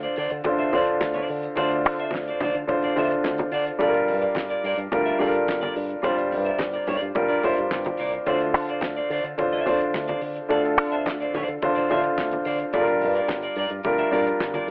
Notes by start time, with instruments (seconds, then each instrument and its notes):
Already playing: grand piano D3 D4 F4 C5
0.03 clean electric guitar F4 C5 D5, closed hi-hat
0.16 fingered electric bass D3, clean electric guitar F4 C5 D5, open hi-hat
0.30 fingered electric bass D3, muted clean electric guitar stroke, closed hi-hat
0.44 fingered electric bass A1, grand piano D3 D4 F4 C5, muted clean electric guitar stroke, kick, closed hi-hat, muted conga
0.58 clean electric guitar F4 C5 E5, closed hi-hat
0.72 grand piano D3 D4 F4 C5, fingered electric bass D3, clean electric guitar F4 C5 D5, open hi-hat, muted conga, low conga
0.87 muted clean electric guitar stroke, closed hi-hat
1.01 fingered electric bass D2, kick, snare, clap, closed hi-hat, high conga
1.14 clean electric guitar F4 C5 D5, closed hi-hat, high conga
1.28 fingered electric bass D3, muted clean electric guitar stroke, open hi-hat
1.42 muted clean electric guitar stroke, closed hi-hat
1.56 fingered electric bass D2, grand piano D3 D4 F4 C5, clean electric guitar F4 C5 D5, kick, closed hi-hat, muted conga
1.71 muted clean electric guitar stroke, closed hi-hat
1.84 fingered electric bass D3, muted clean electric guitar stroke, open hi-hat, muted conga
2.00 clean electric guitar F4 C5 E5, closed hi-hat
2.11 fingered electric bass D2, kick, snare, closed hi-hat, high conga
2.15 muted clean electric guitar stroke, clap
2.28 clean electric guitar F4 C5 D5, closed hi-hat
2.41 fingered electric bass D3, clean electric guitar F4 C5 D5, open hi-hat, low conga
2.55 fingered electric bass D3, muted clean electric guitar stroke, closed hi-hat
2.67 fingered electric bass A1, grand piano D3 D4 F4 C5, muted clean electric guitar stroke, kick, closed hi-hat, muted conga
2.82 clean electric guitar F4 C5 D5, closed hi-hat
2.96 grand piano D3 D4 F4 C5, fingered electric bass D3, clean electric guitar F4 C5 E5, open hi-hat, muted conga, low conga
3.11 muted clean electric guitar stroke, closed hi-hat
3.24 fingered electric bass D2, kick, snare, clap, closed hi-hat, high conga
3.38 muted clean electric guitar stroke, closed hi-hat, high conga
3.52 fingered electric bass D3, clean electric guitar F4 C5 D5, open hi-hat
3.66 muted clean electric guitar stroke, closed hi-hat
3.79 fingered electric bass G1, grand piano G3 D4 F4 A4, clean electric guitar F4 A#4 D5, kick, closed hi-hat, muted conga
3.87 grand piano A#4
3.94 muted clean electric guitar stroke, closed hi-hat
4.07 fingered electric bass G2, muted clean electric guitar stroke, open hi-hat
4.21 clean electric guitar F4 A#4 D5, closed hi-hat
4.35 fingered electric bass G1, muted clean electric guitar stroke, kick, snare, clap, closed hi-hat, high conga
4.49 clean electric guitar F4 A#4 D5, closed hi-hat
4.64 fingered electric bass G2, clean electric guitar F4 A#4 D5, open hi-hat
4.77 fingered electric bass G2, muted clean electric guitar stroke, closed hi-hat
4.92 fingered electric bass D2, grand piano G3 D4 F4 A#4, muted clean electric guitar stroke, kick, closed hi-hat, muted conga
5.06 clean electric guitar F4 A#4 E5, closed hi-hat
5.19 fingered electric bass G2, grand piano G3 D4 F4 A4, clean electric guitar F4 A#4 D5, open hi-hat, muted conga, low conga
5.27 grand piano A#4
5.34 muted clean electric guitar stroke, closed hi-hat
5.47 fingered electric bass G1, muted clean electric guitar stroke, kick, snare, clap, closed hi-hat, high conga
5.61 clean electric guitar F4 A#4 D5, closed hi-hat, high conga
5.75 fingered electric bass G2, muted clean electric guitar stroke, open hi-hat
5.89 muted clean electric guitar stroke, closed hi-hat
6.02 fingered electric bass G1, grand piano G3 D4 F4 C5, clean electric guitar F4 A#4 D5, kick, closed hi-hat, muted conga
6.17 muted clean electric guitar stroke, closed hi-hat
6.31 fingered electric bass G2, muted clean electric guitar stroke, open hi-hat, muted conga
6.45 clean electric guitar F4 A#4 E5, closed hi-hat
6.59 fingered electric bass G1, muted clean electric guitar stroke, kick, snare, clap, closed hi-hat, high conga
6.74 clean electric guitar F4 A#4 D5, closed hi-hat
6.87 fingered electric bass G2, clean electric guitar F4 A#4 D5, open hi-hat, low conga
7.01 fingered electric bass G2, muted clean electric guitar stroke, closed hi-hat
7.15 fingered electric bass G1, grand piano G3 D4 F4 A#4, muted clean electric guitar stroke, kick, closed hi-hat, muted conga
7.28 fingered electric bass G2, clean electric guitar F4 A#4 D5, closed hi-hat
7.43 fingered electric bass G1, grand piano G3 D4 F4 C5, clean electric guitar F4 A#4 E5, open hi-hat, muted conga, low conga
7.57 fingered electric bass G2, muted clean electric guitar stroke, closed hi-hat
7.71 fingered electric bass G2, kick, snare, clap, closed hi-hat, high conga
7.85 muted clean electric guitar stroke, closed hi-hat, high conga
7.97 fingered electric bass C2, clean electric guitar F4 A#4 D5, open hi-hat
8.13 muted clean electric guitar stroke, closed hi-hat
8.26 fingered electric bass D2, grand piano D3 D4 F4 C5, clean electric guitar F4 C5 D5, kick, closed hi-hat, muted conga
8.40 muted clean electric guitar stroke, closed hi-hat
8.54 fingered electric bass D3, muted clean electric guitar stroke, open hi-hat, muted conga
8.69 clean electric guitar F4 C5 D5, closed hi-hat
8.81 fingered electric bass D2, kick, snare, clap, closed hi-hat, high conga
8.97 clean electric guitar F4 C5 D5, closed hi-hat
9.10 fingered electric bass D3, clean electric guitar F4 C5 D5, open hi-hat
9.24 fingered electric bass D3, muted clean electric guitar stroke, closed hi-hat
9.38 fingered electric bass A1, grand piano D3 D4 F4 C5, muted clean electric guitar stroke, kick, closed hi-hat, muted conga
9.53 clean electric guitar F4 C5 E5, closed hi-hat
9.65 grand piano D3 D4 F4 C5, fingered electric bass D3, clean electric guitar F4 C5 D5, open hi-hat, muted conga, low conga
9.81 muted clean electric guitar stroke, closed hi-hat
9.94 fingered electric bass D2, muted clean electric guitar stroke, kick, snare, clap, closed hi-hat, high conga
10.08 clean electric guitar F4 C5 D5, closed hi-hat, high conga
10.21 fingered electric bass D3, muted clean electric guitar stroke, open hi-hat
10.36 muted clean electric guitar stroke, closed hi-hat
10.49 fingered electric bass D2, grand piano D3 D4 F4 A4, clean electric guitar F4 C5 D5, kick, closed hi-hat, muted conga
10.63 muted clean electric guitar stroke, closed hi-hat
10.77 fingered electric bass D3, muted clean electric guitar stroke, open hi-hat
10.92 clean electric guitar F4 C5 E5, closed hi-hat
11.06 fingered electric bass D2, kick, snare, clap, closed hi-hat, high conga
11.20 clean electric guitar F4 C5 D5, closed hi-hat
11.34 fingered electric bass D3, clean electric guitar F4 C5 D5, open hi-hat, low conga
11.48 fingered electric bass D3, muted clean electric guitar stroke, closed hi-hat
11.62 fingered electric bass A1, grand piano D3 D4 F4 C5, muted clean electric guitar stroke, kick, closed hi-hat, muted conga
11.75 clean electric guitar F4 C5 D5, closed hi-hat
11.89 grand piano D3 D4 F4 C5, fingered electric bass D3, clean electric guitar F4 C5 E5, open hi-hat, muted conga, low conga
12.03 muted clean electric guitar stroke, closed hi-hat
12.18 fingered electric bass D2, kick, snare, clap, closed hi-hat, high conga
12.31 muted clean electric guitar stroke, closed hi-hat, high conga
12.45 fingered electric bass D3, clean electric guitar F4 C5 D5, open hi-hat
12.59 muted clean electric guitar stroke, closed hi-hat
12.73 fingered electric bass G1, grand piano G3 D4 F4 A4, clean electric guitar F4 A#4 D5, kick, closed hi-hat, muted conga
12.81 grand piano A#4
12.87 muted clean electric guitar stroke, closed hi-hat
13.00 fingered electric bass G2, muted clean electric guitar stroke, open hi-hat
13.15 clean electric guitar F4 A#4 D5, closed hi-hat
13.28 fingered electric bass G1, kick, snare, clap, closed hi-hat, high conga
13.42 clean electric guitar F4 A#4 D5, closed hi-hat
13.56 fingered electric bass G2, clean electric guitar F4 A#4 D5, open hi-hat
13.69 fingered electric bass G2, muted clean electric guitar stroke, closed hi-hat
13.83 fingered electric bass D2, grand piano G3 D4 F4 A#4, muted clean electric guitar stroke, kick, closed hi-hat, muted conga
13.98 clean electric guitar F4 A#4 E5, closed hi-hat
14.11 fingered electric bass G2, grand piano G3 D4 F4 A#4, clean electric guitar F4 A#4 D5, open hi-hat, muted conga, low conga
14.26 muted clean electric guitar stroke, closed hi-hat
14.40 fingered electric bass G1, kick, snare, clap, closed hi-hat, high conga
14.54 clean electric guitar F4 A#4 D5, closed hi-hat, high conga
14.68 fingered electric bass G2